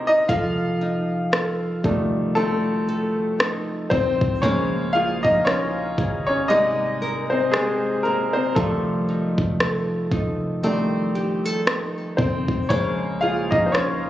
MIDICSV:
0, 0, Header, 1, 5, 480
1, 0, Start_track
1, 0, Tempo, 1034483
1, 135, Time_signature, 4, 2, 24, 8
1, 6542, End_track
2, 0, Start_track
2, 0, Title_t, "Nylon-string guitar"
2, 0, Program_c, 0, 24
2, 0, Note_on_c, 0, 56, 80
2, 0, Note_on_c, 0, 60, 54
2, 0, Note_on_c, 0, 67, 60
2, 0, Note_on_c, 0, 70, 60
2, 135, Note_off_c, 0, 67, 0
2, 136, Note_on_c, 0, 53, 80
2, 139, Note_on_c, 0, 69, 67
2, 190, Note_off_c, 0, 56, 0
2, 190, Note_off_c, 0, 70, 0
2, 375, Note_off_c, 0, 60, 0
2, 377, Note_on_c, 0, 63, 58
2, 612, Note_off_c, 0, 69, 0
2, 617, Note_on_c, 0, 69, 63
2, 853, Note_off_c, 0, 63, 0
2, 858, Note_on_c, 0, 63, 54
2, 1098, Note_on_c, 0, 60, 70
2, 1333, Note_off_c, 0, 69, 0
2, 1339, Note_on_c, 0, 69, 66
2, 1572, Note_off_c, 0, 63, 0
2, 1577, Note_on_c, 0, 63, 60
2, 1816, Note_off_c, 0, 60, 0
2, 1818, Note_on_c, 0, 60, 56
2, 2055, Note_off_c, 0, 53, 0
2, 2055, Note_off_c, 0, 60, 0
2, 2057, Note_on_c, 0, 58, 82
2, 2061, Note_on_c, 0, 72, 70
2, 2112, Note_off_c, 0, 63, 0
2, 2112, Note_off_c, 0, 69, 0
2, 2297, Note_on_c, 0, 68, 59
2, 2535, Note_off_c, 0, 72, 0
2, 2537, Note_on_c, 0, 72, 65
2, 2775, Note_off_c, 0, 68, 0
2, 2777, Note_on_c, 0, 68, 54
2, 3014, Note_off_c, 0, 58, 0
2, 3016, Note_on_c, 0, 56, 81
2, 3071, Note_off_c, 0, 68, 0
2, 3254, Note_off_c, 0, 72, 0
2, 3256, Note_on_c, 0, 70, 69
2, 3496, Note_on_c, 0, 67, 60
2, 3736, Note_on_c, 0, 60, 56
2, 3975, Note_off_c, 0, 67, 0
2, 3976, Note_on_c, 0, 53, 78
2, 3978, Note_on_c, 0, 69, 66
2, 4031, Note_off_c, 0, 56, 0
2, 4031, Note_off_c, 0, 70, 0
2, 4214, Note_off_c, 0, 60, 0
2, 4216, Note_on_c, 0, 63, 61
2, 4450, Note_off_c, 0, 69, 0
2, 4455, Note_on_c, 0, 69, 62
2, 4690, Note_off_c, 0, 63, 0
2, 4695, Note_on_c, 0, 63, 57
2, 4934, Note_on_c, 0, 60, 73
2, 5173, Note_off_c, 0, 69, 0
2, 5175, Note_on_c, 0, 67, 63
2, 5315, Note_off_c, 0, 67, 0
2, 5315, Note_on_c, 0, 69, 52
2, 5409, Note_off_c, 0, 63, 0
2, 5414, Note_on_c, 0, 63, 58
2, 5652, Note_off_c, 0, 60, 0
2, 5654, Note_on_c, 0, 60, 54
2, 5893, Note_off_c, 0, 60, 0
2, 5895, Note_off_c, 0, 53, 0
2, 5895, Note_on_c, 0, 58, 79
2, 5897, Note_on_c, 0, 72, 70
2, 5950, Note_off_c, 0, 63, 0
2, 5951, Note_off_c, 0, 69, 0
2, 6134, Note_on_c, 0, 68, 60
2, 6374, Note_off_c, 0, 72, 0
2, 6376, Note_on_c, 0, 72, 62
2, 6542, Note_off_c, 0, 58, 0
2, 6542, Note_off_c, 0, 68, 0
2, 6542, Note_off_c, 0, 72, 0
2, 6542, End_track
3, 0, Start_track
3, 0, Title_t, "Grand piano"
3, 0, Program_c, 1, 0
3, 0, Control_c, 1, 64, 127
3, 0, Note_on_c, 1, 48, 58
3, 0, Note_on_c, 1, 56, 68
3, 0, Note_on_c, 1, 58, 69
3, 0, Note_on_c, 1, 60, 64
3, 0, Note_on_c, 1, 63, 69
3, 0, Note_on_c, 1, 67, 52
3, 0, Note_on_c, 1, 68, 101
3, 0, Note_on_c, 1, 70, 91
3, 0, Note_on_c, 1, 72, 85
3, 0, Note_on_c, 1, 75, 90
3, 33, Note_off_c, 1, 75, 0
3, 33, Note_on_c, 1, 75, 98
3, 40, Note_off_c, 1, 63, 0
3, 40, Note_on_c, 1, 63, 73
3, 131, Note_off_c, 1, 63, 0
3, 133, Note_on_c, 1, 77, 101
3, 137, Note_off_c, 1, 75, 0
3, 140, Note_on_c, 1, 65, 77
3, 141, Note_off_c, 1, 56, 0
3, 141, Note_off_c, 1, 67, 0
3, 141, Control_c, 1, 64, 0
3, 142, Note_off_c, 1, 60, 0
3, 142, Note_off_c, 1, 70, 0
3, 143, Note_off_c, 1, 68, 0
3, 144, Note_off_c, 1, 48, 0
3, 145, Note_off_c, 1, 58, 0
3, 145, Note_off_c, 1, 72, 0
3, 222, Control_c, 1, 64, 127
3, 853, Note_on_c, 1, 51, 56
3, 855, Note_on_c, 1, 55, 49
3, 858, Note_on_c, 1, 57, 59
3, 1075, Note_off_c, 1, 77, 0
3, 1078, Note_off_c, 1, 65, 0
3, 1091, Note_on_c, 1, 69, 91
3, 1093, Note_off_c, 1, 57, 0
3, 1100, Note_on_c, 1, 57, 71
3, 1188, Note_off_c, 1, 51, 0
3, 1188, Note_off_c, 1, 55, 0
3, 1794, Note_off_c, 1, 69, 0
3, 1799, Note_off_c, 1, 57, 0
3, 1810, Note_on_c, 1, 72, 87
3, 1818, Note_on_c, 1, 60, 71
3, 2035, Note_off_c, 1, 72, 0
3, 2040, Note_off_c, 1, 60, 0
3, 2050, Note_on_c, 1, 73, 87
3, 2053, Note_on_c, 1, 49, 51
3, 2056, Note_on_c, 1, 56, 49
3, 2058, Note_on_c, 1, 72, 61
3, 2059, Note_on_c, 1, 61, 69
3, 2061, Control_c, 1, 64, 0
3, 2145, Control_c, 1, 64, 127
3, 2280, Note_off_c, 1, 61, 0
3, 2287, Note_on_c, 1, 77, 98
3, 2297, Note_on_c, 1, 65, 73
3, 2299, Note_off_c, 1, 73, 0
3, 2387, Note_off_c, 1, 49, 0
3, 2389, Note_off_c, 1, 56, 0
3, 2390, Note_off_c, 1, 72, 0
3, 2420, Note_off_c, 1, 77, 0
3, 2425, Note_off_c, 1, 65, 0
3, 2426, Note_on_c, 1, 75, 85
3, 2437, Note_on_c, 1, 63, 69
3, 2523, Note_off_c, 1, 75, 0
3, 2528, Note_on_c, 1, 73, 87
3, 2529, Note_off_c, 1, 63, 0
3, 2537, Note_on_c, 1, 61, 68
3, 2896, Note_off_c, 1, 61, 0
3, 2900, Note_off_c, 1, 73, 0
3, 2907, Note_on_c, 1, 73, 85
3, 2918, Note_on_c, 1, 61, 70
3, 3008, Note_on_c, 1, 75, 93
3, 3010, Note_off_c, 1, 61, 0
3, 3011, Note_on_c, 1, 48, 57
3, 3014, Note_off_c, 1, 73, 0
3, 3014, Note_on_c, 1, 55, 53
3, 3017, Note_on_c, 1, 58, 63
3, 3018, Note_on_c, 1, 63, 76
3, 3020, Control_c, 1, 64, 0
3, 3093, Control_c, 1, 64, 127
3, 3346, Note_off_c, 1, 48, 0
3, 3348, Note_off_c, 1, 55, 0
3, 3350, Note_off_c, 1, 58, 0
3, 3377, Note_off_c, 1, 63, 0
3, 3387, Note_on_c, 1, 72, 80
3, 3397, Note_on_c, 1, 60, 64
3, 3402, Note_off_c, 1, 75, 0
3, 3484, Note_off_c, 1, 72, 0
3, 3487, Note_on_c, 1, 68, 77
3, 3489, Note_off_c, 1, 60, 0
3, 3497, Note_on_c, 1, 56, 62
3, 3719, Note_off_c, 1, 56, 0
3, 3726, Note_on_c, 1, 70, 82
3, 3736, Note_on_c, 1, 58, 63
3, 3738, Note_off_c, 1, 68, 0
3, 3865, Note_off_c, 1, 58, 0
3, 3867, Note_on_c, 1, 72, 82
3, 3874, Note_off_c, 1, 70, 0
3, 3877, Note_on_c, 1, 60, 60
3, 3968, Note_on_c, 1, 69, 72
3, 3969, Note_off_c, 1, 60, 0
3, 3972, Note_on_c, 1, 51, 52
3, 3974, Note_off_c, 1, 72, 0
3, 3975, Note_on_c, 1, 55, 48
3, 3978, Note_on_c, 1, 57, 60
3, 3981, Control_c, 1, 64, 0
3, 4049, Control_c, 1, 64, 127
3, 4675, Note_off_c, 1, 51, 0
3, 4676, Note_off_c, 1, 55, 0
3, 4913, Note_off_c, 1, 69, 0
3, 4918, Note_off_c, 1, 57, 0
3, 4933, Note_on_c, 1, 51, 50
3, 4934, Note_on_c, 1, 55, 43
3, 4937, Note_on_c, 1, 57, 56
3, 5155, Note_off_c, 1, 51, 0
3, 5156, Note_off_c, 1, 55, 0
3, 5157, Note_off_c, 1, 57, 0
3, 5647, Note_on_c, 1, 72, 71
3, 5658, Note_on_c, 1, 60, 56
3, 5879, Note_off_c, 1, 60, 0
3, 5888, Note_on_c, 1, 73, 82
3, 5890, Note_off_c, 1, 72, 0
3, 5892, Note_on_c, 1, 49, 51
3, 5894, Note_on_c, 1, 56, 48
3, 5897, Note_on_c, 1, 72, 60
3, 5899, Note_on_c, 1, 61, 60
3, 5901, Control_c, 1, 64, 0
3, 5971, Control_c, 1, 64, 127
3, 6120, Note_off_c, 1, 61, 0
3, 6128, Note_on_c, 1, 77, 88
3, 6138, Note_off_c, 1, 73, 0
3, 6138, Note_on_c, 1, 65, 67
3, 6266, Note_off_c, 1, 65, 0
3, 6267, Note_on_c, 1, 75, 78
3, 6275, Note_off_c, 1, 77, 0
3, 6277, Note_on_c, 1, 63, 63
3, 6333, Note_off_c, 1, 72, 0
3, 6340, Note_on_c, 1, 72, 59
3, 6344, Note_off_c, 1, 63, 0
3, 6346, Note_off_c, 1, 75, 0
3, 6366, Note_on_c, 1, 73, 78
3, 6371, Note_off_c, 1, 72, 0
3, 6377, Note_on_c, 1, 61, 66
3, 6542, Note_off_c, 1, 49, 0
3, 6542, Note_off_c, 1, 56, 0
3, 6542, Note_off_c, 1, 61, 0
3, 6542, Note_off_c, 1, 73, 0
3, 6542, End_track
4, 0, Start_track
4, 0, Title_t, "808-style bass"
4, 0, Program_c, 2, 38
4, 0, Note_on_c, 2, 39, 92
4, 116, Note_off_c, 2, 39, 0
4, 136, Note_on_c, 2, 29, 101
4, 837, Note_off_c, 2, 29, 0
4, 857, Note_on_c, 2, 29, 99
4, 1797, Note_off_c, 2, 29, 0
4, 1817, Note_on_c, 2, 27, 96
4, 1949, Note_off_c, 2, 27, 0
4, 1956, Note_on_c, 2, 36, 93
4, 2051, Note_off_c, 2, 36, 0
4, 2057, Note_on_c, 2, 34, 108
4, 2420, Note_off_c, 2, 34, 0
4, 2436, Note_on_c, 2, 34, 100
4, 2762, Note_off_c, 2, 34, 0
4, 2776, Note_on_c, 2, 32, 104
4, 3956, Note_off_c, 2, 32, 0
4, 3974, Note_on_c, 2, 29, 105
4, 4338, Note_off_c, 2, 29, 0
4, 4354, Note_on_c, 2, 29, 96
4, 4681, Note_off_c, 2, 29, 0
4, 4694, Note_on_c, 2, 29, 94
4, 5295, Note_off_c, 2, 29, 0
4, 5655, Note_on_c, 2, 41, 100
4, 5788, Note_off_c, 2, 41, 0
4, 5794, Note_on_c, 2, 29, 95
4, 5891, Note_off_c, 2, 29, 0
4, 5895, Note_on_c, 2, 34, 102
4, 6259, Note_off_c, 2, 34, 0
4, 6274, Note_on_c, 2, 34, 103
4, 6515, Note_on_c, 2, 32, 90
4, 6522, Note_off_c, 2, 34, 0
4, 6542, Note_off_c, 2, 32, 0
4, 6542, End_track
5, 0, Start_track
5, 0, Title_t, "Drums"
5, 135, Note_on_c, 9, 36, 110
5, 181, Note_off_c, 9, 36, 0
5, 617, Note_on_c, 9, 37, 107
5, 663, Note_off_c, 9, 37, 0
5, 855, Note_on_c, 9, 36, 92
5, 901, Note_off_c, 9, 36, 0
5, 1578, Note_on_c, 9, 37, 108
5, 1624, Note_off_c, 9, 37, 0
5, 1816, Note_on_c, 9, 36, 91
5, 1862, Note_off_c, 9, 36, 0
5, 1955, Note_on_c, 9, 36, 91
5, 2001, Note_off_c, 9, 36, 0
5, 2055, Note_on_c, 9, 36, 113
5, 2102, Note_off_c, 9, 36, 0
5, 2434, Note_on_c, 9, 36, 90
5, 2481, Note_off_c, 9, 36, 0
5, 2538, Note_on_c, 9, 37, 111
5, 2585, Note_off_c, 9, 37, 0
5, 2775, Note_on_c, 9, 36, 97
5, 2821, Note_off_c, 9, 36, 0
5, 3496, Note_on_c, 9, 37, 108
5, 3543, Note_off_c, 9, 37, 0
5, 3973, Note_on_c, 9, 36, 111
5, 4020, Note_off_c, 9, 36, 0
5, 4352, Note_on_c, 9, 36, 97
5, 4399, Note_off_c, 9, 36, 0
5, 4456, Note_on_c, 9, 37, 110
5, 4502, Note_off_c, 9, 37, 0
5, 4693, Note_on_c, 9, 36, 93
5, 4740, Note_off_c, 9, 36, 0
5, 5416, Note_on_c, 9, 37, 112
5, 5462, Note_off_c, 9, 37, 0
5, 5653, Note_on_c, 9, 36, 89
5, 5700, Note_off_c, 9, 36, 0
5, 5792, Note_on_c, 9, 36, 88
5, 5839, Note_off_c, 9, 36, 0
5, 5894, Note_on_c, 9, 36, 109
5, 5940, Note_off_c, 9, 36, 0
5, 6273, Note_on_c, 9, 36, 93
5, 6320, Note_off_c, 9, 36, 0
5, 6379, Note_on_c, 9, 37, 111
5, 6425, Note_off_c, 9, 37, 0
5, 6542, End_track
0, 0, End_of_file